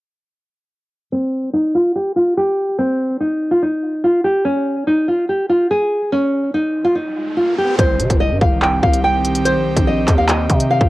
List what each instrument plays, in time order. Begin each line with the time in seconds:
1.12 nylon-string guitar C4
1.53 nylon-string guitar D#4
1.75 nylon-string guitar F4
1.96 nylon-string guitar G4
2.16 nylon-string guitar F4
2.37 nylon-string guitar G4
2.79 nylon-string guitar C4
3.21 nylon-string guitar D#4
3.51 nylon-string guitar F4
3.62 nylon-string guitar D#4
4.04 nylon-string guitar F4
4.24 nylon-string guitar G4
4.45 nylon-string guitar C#4
4.87 nylon-string guitar D#4
5.08 nylon-string guitar F4
5.29 nylon-string guitar G4
5.49 nylon-string guitar F4
5.71 nylon-string guitar G#4
6.12 nylon-string guitar C#4, riser
6.54 nylon-string guitar D#4
6.84 nylon-string guitar F4
6.95 nylon-string guitar D#4
7.37 nylon-string guitar F4
7.58 nylon-string guitar G4
7.79 808-style bass C2, analog synth pad D#3 C4 G4, nylon-string guitar C5, kick, closed hi-hat, impact
8.00 808-style bass C3, closed hi-hat
8.10 808-style bass C2, kick, closed hi-hat
8.20 nylon-string guitar D#5
8.31 808-style bass G2
8.41 808-style bass C2, nylon-string guitar F5, kick
8.62 nylon-string guitar G5, clap
8.83 808-style bass C2, nylon-string guitar F5, kick
8.93 closed hi-hat
9.04 nylon-string guitar G5
9.25 closed hi-hat
9.35 closed hi-hat
9.45 nylon-string guitar C5, closed hi-hat
9.56 808-style bass A#1
9.66 808-style bass C2
9.77 808-style bass A#1, kick, closed hi-hat
9.87 nylon-string guitar D#5
10.08 808-style bass D#2, kick, clap, closed hi-hat
10.18 nylon-string guitar F5
10.29 nylon-string guitar D#5, clap, closed hi-hat
10.50 808-style bass C3, kick, closed hi-hat
10.60 closed hi-hat
10.71 nylon-string guitar F5
10.81 808-style bass C2, kick